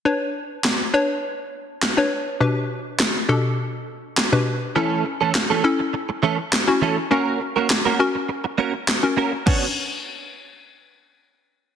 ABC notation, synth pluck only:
X:1
M:4/4
L:1/16
Q:1/4=102
K:Bm
V:1 name="Synth pluck"
[DBc]4 z2 [DBc]4- [DBc] z2 [DBc]2 z | [B,,DGB]4 z2 [B,,DGA]4- [B,,DGA] z2 [B,,DGB]2 z | [CEA]4 z2 [CEA]4- [CEA] z2 [CEF]2 z | [CF^A]4 z2 [CFA]4- [CFA] z2 [CFA]2 z |
[CDB]2 z12 z2 |]